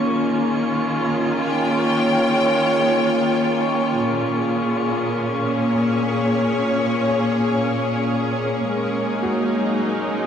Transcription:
Already playing: D#3 A#3 C#4 F4 G#4 C#6
1.41 C#5 G5
3.99 A#2
4.24 G#4
4.44 C#4
5.49 C#5
8.65 G#3
9.01 D#4
9.23 F#4
9.51 F#3

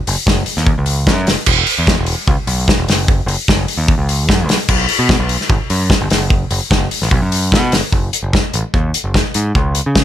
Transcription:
0.07 F#1, open hi-hat
0.26 F#1, kick, snare
0.46 open hi-hat
0.57 D#2, snare
0.67 kick
0.78 C#2
0.86 open hi-hat
1.07 F#2, kick, snare
1.27 F#1, snare, open hi-hat
1.46 E1, kick, crash
1.67 open hi-hat
1.78 E2
1.87 kick, snare
1.99 E1
2.06 open hi-hat
2.27 C#2, kick
2.47 B1, open hi-hat
2.68 kick, snare
2.78 E1
2.88 F#1, snare, open hi-hat
3.08 kick
3.26 F#1, open hi-hat
3.48 F#1, kick, snare
3.68 open hi-hat
3.77 D#2
3.88 kick
3.98 C#2
4.09 open hi-hat
4.29 F#2, kick, snare
4.49 B1, snare, open hi-hat
4.69 B1, kick, crash
4.89 open hi-hat
4.99 B2
5.09 kick, snare
5.19 B1
5.29 open hi-hat
5.41 snare
5.50 G#1, kick
5.70 F#2, open hi-hat
5.90 kick, snare
6.01 G1
6.10 F#1, snare, open hi-hat
6.30 kick
6.51 F#1, open hi-hat
6.71 F#1, kick, snare
6.91 open hi-hat
7.02 A1, snare
7.11 B1, kick
7.21 F#2
7.32 open hi-hat
7.52 B2, kick, snare
7.72 G1, snare, open hi-hat
7.92 F#1, kick
8.13 closed hi-hat
8.23 F#1
8.33 kick, snare
8.54 A1, closed hi-hat
8.74 D#2, kick
8.94 closed hi-hat
9.04 F#1
9.14 kick, snare
9.34 G#2, closed hi-hat
9.55 C#2, kick
9.75 closed hi-hat
9.86 C#3
9.95 kick, snare

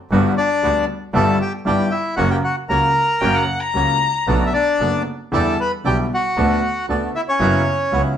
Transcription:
0.11 G1 G2 D3 G3 B3 F#4
0.37 D4 D5
0.63 D2 D3 G3 B3 F#4
1.13 G1 G2 D3 G3 B3 D4 E4 A4 A5
1.41 G4 G5
1.65 G1 G2 D3 G3 B3 D4 E4 G4 G5
1.91 E4 E5
2.16 F#1 F#2 C#3 F#3 A#3 C#4 F#4 F#5
2.30 G4 G5
2.44 F#4 F#5
2.69 C#2 C#3 F#3 A#3 C#4 F#4 A#4 A#5
3.21 F#1 F#2 C#3 F#3 A#3 C#4 F#4 G5
3.35 F#5
3.61 A#5
3.74 C#2 C#3 F#3 A#3 C#4 F#4
4.27 B1 B2 D3 A3 B3 D4 F#4 A4
4.46 E5
4.53 D4 D5
4.80 F#1 F#2 D3 A3 B3 D4 F#4 A4
5.32 E2 D3 E3 G3 B3 D4 E4 G4 A4 A5
5.60 B4 B5
5.84 B1 B2 D3 G3 B3 D4 E4 G4 G5
6.14 F#4 F#5
6.37 D2 D3 A3 B3 D4 F#4 A4
6.89 D2 D3 A3 B3 D4 F#4 A4
7.15 E4 E5
7.29 C#4 C#5
7.39 F#1 F#2 C#3 F#3 B3 E4 F#4
7.92 C#2 C#3 F#3 B3 E4 F#4

